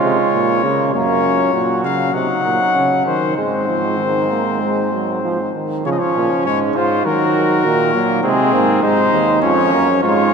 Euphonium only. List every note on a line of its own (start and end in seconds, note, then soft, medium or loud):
0.03 0.17 C3 medium
0.34 0.65 A#2 medium
0.64 0.95 C#3 medium
0.94 1.53 F#2 medium
1.54 1.85 A#2 medium
1.84 2.13 C#3 medium
2.14 2.28 C3 medium
2.45 2.59 A#2 medium
2.75 3.06 C#3 medium
3.06 3.37 D#3 medium
3.37 5.51 G#2 medium
5.85 5.99 C#3 medium
6.16 6.29 A#2 medium
6.46 6.75 G#2 medium
6.76 7.05 G#2 medium
7.06 7.66 D#3 medium
7.65 8.23 A#2 medium
8.24 8.55 C3 medium
8.53 8.82 G#2 medium
8.83 9.12 G#2 medium
9.13 9.44 D#2 medium
9.43 9.75 F2 medium
9.73 10.03 F#2 medium
10.04 10.33 G#2 medium